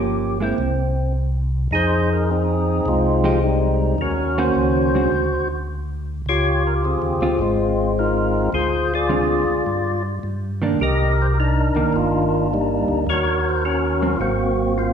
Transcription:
Already playing: G1 F3 A#3 C#4 G4
0.40 G#3 A#3 C4 E4
0.58 C2
1.71 F2 D#4 G#4 C5
2.13 A#4
2.31 C4 D#4 G#4
2.86 C2 G#3 C4 F4
3.24 F3 G#3 D#4 G4
3.43 G3 G#3 D#4
3.98 D#2 C#4 F#4 A#4
4.38 D#3 A#3 C#4 F#4 C5
4.55 C#2
4.95 D3 G#3 C4 F#4
5.12 D2
6.26 C#2 F4 G4 C#5
6.67 A#4
6.84 C4 F4 G#4
7.02 D#2
7.21 D2 C4 F4
7.39 G#1 G#3 C4 F4
7.99 D#4 F4 A#4
8.53 D2 F4 G#4 C5
8.94 F4 G#4 D5
9.09 D3 G#3 C4 F4
9.48 D2
9.66 G2
10.23 G2
10.62 D#3 A#3 D4
10.80 C2 G4 A#4 D#5
11.22 C5
11.34 G4
11.40 D4 D#4 A#4
11.75 C2 D#3 A#3
11.92 G1 A#3 D4 F4
12.53 G3 A#3 D#4
12.88 D2
13.07 D#2 F#4 A#4 C#5
13.49 C5
13.65 C#4 F#4 A#4
14.02 F#3 C4
14.16 G#1 F4
14.21 A#3 C4 F#4
14.78 A#3 C4 F4

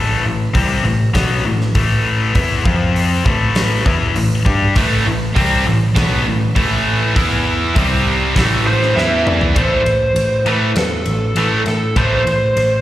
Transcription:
Already playing: A1 A2 E3 A3
0.24 A1 A2 E3
0.54 C2 C3 G3 C4, kick, open hi-hat
0.84 A1 A2 E3
1.14 B1 B2 F#3 B3, kick, snare, open hi-hat
1.44 A1 A2 E3
1.61 snare
1.75 A1 A2 E3 A3, kick, open hi-hat
2.35 E2 E3 B3 E4, kick, open hi-hat
2.64 F2 F3 C4 F4, kick
2.96 open hi-hat
3.25 A1 A2 E3 A3, kick
3.55 snare, open hi-hat
3.85 E2 E3 B3 E4, kick
4.16 A1 A2 E3, open hi-hat
4.45 G2 G3 D4 G4, kick
4.76 A1 A2 E3 A3, kick, open hi-hat
5.06 A1 A2 E3
5.36 C2 C3 G3 C4, kick, open hi-hat
5.66 A1 A2 E3
5.96 B1 B2 F#3 B3, kick, snare, open hi-hat
6.26 A1 A2 E3
6.56 A1 A2 E3 A3, kick, open hi-hat
7.16 E2 E3 B3 E4, kick, open hi-hat
7.75 C2 C3 G3 C4, kick, open hi-hat
8.36 A1 A2 E3 A3, kick, snare, open hi-hat
8.67 C5
8.82 snare
8.96 E2 E3 B3 E4 E5, snare
9.27 D5, mid tom
9.41 floor tom
9.55 A1 A2 E3 A3 C5, kick, ride
9.85 A1, ride
10.15 A1, ride
10.45 A2 E3 A3 B4, ride
10.75 E2 A4, snare, ride
11.06 A1, ride
11.35 A1 A2 E3 A3, ride
11.66 A2 A4, snare, ride
11.96 A1 A2 E3 A3 C5, kick, ride
12.26 A1 C5, ride
12.57 A1, ride

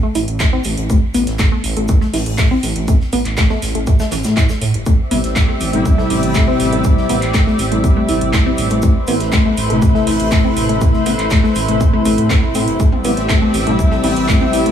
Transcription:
0.03 A3
0.15 A1 E4, open hi-hat, shaker
0.28 A1, closed hi-hat
0.40 A1 A3, kick, snare, clap, closed hi-hat, shaker
0.53 C4
0.64 A1, open hi-hat, shaker
0.77 A1, closed hi-hat
0.90 A1 A3, kick, closed hi-hat, shaker
1.14 A1 B3, open hi-hat, shaker
1.27 A1, snare, closed hi-hat
1.39 A1 A3, kick, snare, clap, closed hi-hat, shaker
1.52 A3
1.64 A1, open hi-hat, shaker
1.77 A1 A3, closed hi-hat
1.88 A1 A3, kick, closed hi-hat, shaker
2.01 A3, snare
2.13 A1 E4, open hi-hat
2.26 A1, closed hi-hat
2.38 A1 A3, kick, snare, clap, closed hi-hat, shaker
2.51 C4
2.63 A1, open hi-hat, shaker
2.76 A1, closed hi-hat
2.88 A1 A3, kick, closed hi-hat, shaker
3.01 snare
3.12 A1 B3, open hi-hat, shaker
3.25 A1, clap, closed hi-hat
3.37 A1 A3, kick, snare, clap, closed hi-hat, shaker
3.50 A3, snare
3.62 A1, snare, open hi-hat, shaker
3.75 A1 A3, closed hi-hat
3.87 A1 A3, kick, closed hi-hat, shaker
3.99 A3, snare, shaker
4.11 A1 E3, snare, open hi-hat, shaker
4.24 A2, snare, closed hi-hat, shaker
4.37 A2 E4, kick, snare, clap, closed hi-hat, shaker
4.49 A3, snare, shaker
4.61 A2, open hi-hat
4.74 G1, closed hi-hat
4.86 A1 A3 C4 G4 D5 E5, kick, closed hi-hat, shaker
5.11 A1 C3 G3 B3 E4, open hi-hat, shaker
5.24 A1, snare, closed hi-hat
5.36 A1 A3, kick, snare, clap, closed hi-hat, shaker
5.48 A3
5.61 A1, open hi-hat, shaker
5.73 A1 C3 G3 A3 E4, closed hi-hat
5.85 A1, kick, closed hi-hat, shaker
5.98 A3, snare
6.10 A1 E4, open hi-hat
6.23 A1, closed hi-hat
6.35 A1 A3, kick, snare, clap, closed hi-hat, shaker
6.48 C4
6.60 A1, open hi-hat, shaker
6.73 A1 A3, closed hi-hat
6.84 A1 A3, kick, closed hi-hat, shaker
6.98 snare
7.09 A1 C3 G3 B3 E4, open hi-hat, shaker
7.22 A1, clap, closed hi-hat
7.34 A1 A3, kick, snare, clap, closed hi-hat, shaker
7.47 A3, snare
7.59 A1, open hi-hat, shaker
7.72 A1 C3 G3 A3 E4, closed hi-hat
7.84 A1, kick, closed hi-hat, shaker
7.97 A3
8.09 A1 E4, open hi-hat, shaker
8.21 A1, closed hi-hat
8.33 A1 A3, kick, snare, clap, closed hi-hat, shaker
8.46 C4
8.58 A1, open hi-hat, shaker
8.70 A1 A3, closed hi-hat
8.82 A1 A3 E4 B4 C5, kick, closed hi-hat, shaker
9.07 A1 C3 A3 B3 E4, open hi-hat, shaker
9.20 A1, snare, closed hi-hat
9.32 A1 A3, kick, snare, clap, closed hi-hat, shaker
9.45 A3
9.57 A1, open hi-hat, shaker
9.70 A1 C3 A3 E4, closed hi-hat
9.82 A1, kick, closed hi-hat, shaker
9.95 A3, snare
10.07 A1 E4, open hi-hat
10.20 A1, closed hi-hat
10.32 A1 A3, kick, snare, clap, closed hi-hat, shaker
10.44 C4
10.57 A1, open hi-hat, shaker
10.69 A1 A3, closed hi-hat
10.81 A1 A3, kick, closed hi-hat, shaker
10.93 snare
11.06 A1 C3 A3 B3 E4, open hi-hat, shaker
11.19 A1, clap, closed hi-hat
11.31 A1 A3, kick, snare, clap, closed hi-hat, shaker
11.44 A3, snare
11.55 A1, open hi-hat, shaker
11.68 A1 C3 A3 E4, closed hi-hat
11.81 A1, kick, closed hi-hat, shaker
11.93 A3
12.05 A1 A3, open hi-hat, shaker
12.18 A2, closed hi-hat
12.30 A2 C4, kick, snare, clap, closed hi-hat, shaker
12.43 A3
12.55 A2 C4, open hi-hat, shaker
12.68 G1, closed hi-hat
12.80 A1 A3 C4 G4 D5 E5, kick, closed hi-hat, shaker
12.92 mid tom
13.04 A1 C3 G3 B3 E4, open hi-hat, shaker
13.17 A1, snare, closed hi-hat
13.29 A1 A3, kick, snare, clap, closed hi-hat, mid tom, shaker
13.42 A3
13.54 A1, open hi-hat, shaker
13.67 A1 C3 G3 A3 E4, closed hi-hat, mid tom
13.79 A1, kick, closed hi-hat, shaker
13.91 A3, snare
14.04 A1 E4, mid tom, open hi-hat
14.16 A1, closed hi-hat
14.28 A1 A3, kick, snare, clap, closed hi-hat, shaker
14.41 C4, mid tom
14.53 A1, open hi-hat, shaker
14.66 A1 A3, closed hi-hat

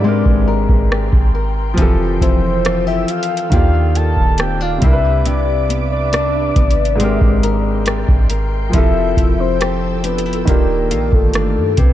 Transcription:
Already playing: G#2 C3 B3 D4 D5
0.00 G#2 G#3 C4
0.04 G#3 G4 A#4 G5 C6
0.26 G#1, kick
0.48 A#4
0.69 G#1, kick
0.91 G4, cross-stick
1.13 G#1, kick
1.35 A#4
1.74 F3 C4 A4, closed hi-hat
1.78 F1 E3 F3 G4 E6, kick
1.82 A4
2.21 F1 E4 C5, kick, closed hi-hat
2.65 F4, cross-stick, closed hi-hat
2.87 G4 E5
3.08 F5, closed hi-hat
3.23 closed hi-hat
3.37 closed hi-hat
3.50 D#2 D#3 A#3 D4 F4 G4 F5 D6, kick, closed hi-hat
3.54 G4
3.95 F4 A5, closed hi-hat
4.17 D#1, kick
4.38 C4 G5, cross-stick, closed hi-hat
4.61 D4 F5
4.78 C3 G3, closed hi-hat
4.82 C2 C3 D4 E4 B4 E5, kick
4.86 A#4
4.93 B4
5.26 C3 D5, closed hi-hat
5.69 B3, closed hi-hat
5.92 D5
6.13 D4, cross-stick, closed hi-hat
6.56 G#1 B3, kick, closed hi-hat
6.71 closed hi-hat
6.85 closed hi-hat
6.96 G#2 G#3
7.00 G#3 C4 G4 A#4 G5 C6, closed hi-hat
7.04 A#4
7.21 G#1, kick
7.43 A#4, closed hi-hat
7.86 G4, cross-stick, closed hi-hat
8.08 G#1, kick
8.30 A#4, closed hi-hat
8.69 F3 C4 A4 E6, closed hi-hat
8.74 F1 F3 E4 G4 E5, kick
8.78 A4
9.17 F1 E4, kick, closed hi-hat
9.40 C5
9.60 G4, cross-stick, closed hi-hat
10.04 D4 B4, closed hi-hat
10.18 closed hi-hat
10.26 E4
10.33 closed hi-hat
10.45 D#1 D#3 A#3 D4 F4 G4 A#4 F5 D6, kick, closed hi-hat
10.49 G4
10.91 A#1 F4, closed hi-hat
11.12 G1 A4, kick
11.34 D4, cross-stick, closed hi-hat
11.57 G2
11.77 C2 C3 B4, kick, closed hi-hat

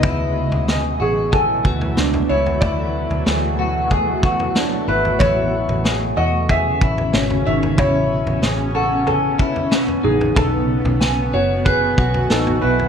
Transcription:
Already playing: B2 B4 D#5 F#5
0.03 D2 E3 F#3 A3 E4, kick, floor tom
0.52 D2, floor tom
0.68 G#4, snare
1.00 A1 F#4 G#4
1.32 A4 G#5, kick, floor tom
1.64 D2 F#4, kick
1.81 floor tom
1.97 C#2 D4, snare
2.14 floor tom
2.29 C#2 E4 C#5
2.46 floor tom
2.61 D2 E4 F#4 D5, kick, floor tom
3.11 D2, floor tom
3.26 D2 G#4, snare
3.59 F#4
3.91 G#4, kick, floor tom
4.23 F#4, kick
4.40 floor tom
4.55 D4, snare
4.88 G#1 E4 B4
5.05 floor tom
5.19 A1 C#3 C#4 E4 C#5, kick, floor tom
5.69 A1, floor tom
5.84 G#4, snare
6.17 E2 F#4 D#5
6.49 G#4 E5, kick, floor tom
6.81 A1 E4, kick
6.98 floor tom
7.13 G#1 C#4 F#4, snare
7.30 floor tom
7.46 G#1 D#3 E5
7.63 floor tom
7.78 A1 B3 E4 C#5, kick, floor tom
8.27 A1, floor tom
8.42 A1 G#4, snare
8.75 F#4 A4
9.07 A4 G#5, floor tom
9.39 E4, kick
9.56 floor tom
9.71 C#4, snare
9.88 floor tom
10.03 A1 D#4 G#4
10.21 floor tom
10.36 B1 B2 F#3 A3 D#4 F#4 A4, kick, floor tom
10.85 B1, floor tom
11.01 G#5, snare
11.33 F#1 F#4 C#5
11.65 G#4 B4 G#5, kick, floor tom
11.89 B4
11.98 B1 F#4, kick
12.14 floor tom
12.30 A1 D#4 A4, snare
12.47 floor tom
12.62 B1 E4 B4
12.79 floor tom

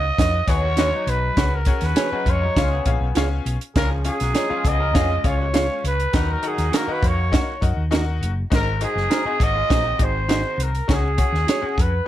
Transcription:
Already playing: D#5
0.18 F2 D#4 F#4 B4 C#5 D#5, kick, snare, closed hi-hat
0.45 D#2 B3 D#4 F#4 G#4 B4 C#5, kick, closed hi-hat
0.49 D#5
0.63 A#3 F#4
0.77 G#3 D#4 F4 F#4 B4 C#5 D#5, snare, closed hi-hat
0.92 F#3 D#4
1.07 B1 B4, closed hi-hat
1.37 C#2 C#3 C#4 F#4 G#4 C#5 F#5, kick, snare, closed hi-hat
1.53 A#4
1.65 C#4 F#4 G#4 C#5 F#5, kick, closed hi-hat
1.81 D#2 B4, snare, closed hi-hat
1.85 B4
1.95 F3 C#4 F#4 G#4 C#5, snare, closed hi-hat
2.12 F#3 C#4 D#4 F#4 G#4 C#5 F#5, muted fingered electric bass stroke
2.26 F2 G#3 F4 C#5, kick, closed hi-hat
2.30 C#5
2.42 F#3 D#4
2.56 C#2 C#3 G#3 C#4 F4 G#4 C#5 F5, kick, snare, closed hi-hat
2.71 B3 G#4
2.86 A#1 C#4 F4 G#4 C#5 F5, kick, closed hi-hat
3.00 B1
3.15 C#2 C#4 F4 G#4 C#5 F5, snare, closed hi-hat
3.46 B1, closed hi-hat
3.61 closed hi-hat
3.75 C#2 F3 C#4 F4 G#4 A#4 C#5 F5, kick, snare, closed hi-hat
4.05 C#4 F4 G#4 C#5 F5, closed hi-hat
4.20 B1 A#3 F#4 A#4, snare, closed hi-hat
4.34 F3 C#4 D#4 F4 G#4 C#5, snare, closed hi-hat
4.49 G#3 C#4 F4 G#4 C#5 F5, muted fingered electric bass stroke
4.64 C#2 B3 G#4 D#5, kick, closed hi-hat
4.80 C#4 A#4
4.94 F2 C#3 F3 B3 C#4 F4 G#4 C#5 F5, kick, snare, closed hi-hat
5.09 G#3 F4
5.23 C#2 G#3 C#4 F4 G#4 C#5 F5, kick, closed hi-hat
5.27 C#5
5.53 C#4 F4 G#4 C#5 F5, snare, closed hi-hat
5.83 C#2 B4, closed hi-hat
6.00 closed hi-hat
6.13 D#2 D#3 F#3 D#4 F#4 A#4 D#5 F#5, kick, snare, closed hi-hat
6.28 A#4
6.43 D#4 F#4 G#4 A#4 D#5 F#5, closed hi-hat
6.47 G#4
6.58 D#2, snare, closed hi-hat
6.72 D#3 A#3 D#4 F#4 A#4, snare, closed hi-hat
6.76 A#4
6.87 D#4 F#4 A#4 B4 D#5 F#5, muted fingered electric bass stroke
6.92 B4
7.02 F2 C#5, kick, closed hi-hat
7.07 C#5
7.31 D#4 F#4 A#4 D#5 F#5, kick, snare, closed hi-hat
7.61 F#2 D#4 F#4 A#4 D#5 F#5, kick, closed hi-hat
7.77 D#2
7.91 D#4 F#4 A#4 D#5 F#5, snare, closed hi-hat
8.21 F#1, closed hi-hat
8.50 G#1 G#2 D#4 F#4 G#4 A#4 C5 D#5, kick, snare, closed hi-hat
8.55 A#4
8.80 D#4 F#4 G#4 C5 D#5, closed hi-hat
8.95 F#1, snare
9.10 D#4 F#4 A#4 C5, snare, closed hi-hat
9.25 C4 D#4 F#4 G#4 C5 D#5, muted fingered electric bass stroke
9.40 G#1 A#3 F#4 D#5, kick, closed hi-hat
9.55 G#3 F4
9.70 A#1 F#3 D#4 F#4 G#4 C5 D#5, kick, snare, closed hi-hat
9.85 D#3 C4
9.99 G#1 D#4 F#4 G#4 C5 D#5, kick, closed hi-hat
10.03 C5
10.28 D#4 F#4 G#4 C5 D#5, snare, closed hi-hat
10.58 C2 A#4, closed hi-hat
10.63 A#4
10.75 closed hi-hat
10.88 C#2 C#3 C#4 F#4 G#4 C#5 F#5, kick, snare, closed hi-hat
10.93 G#4
11.17 C#4 F#4 G#4 C#5 F#5, kick, closed hi-hat
11.32 D#2, snare
11.47 F#4 G#4 C#5, snare, closed hi-hat
11.62 C#4 F#4 G#4 C#5 F#5, muted fingered electric bass stroke
11.77 F2 B4, kick, closed hi-hat

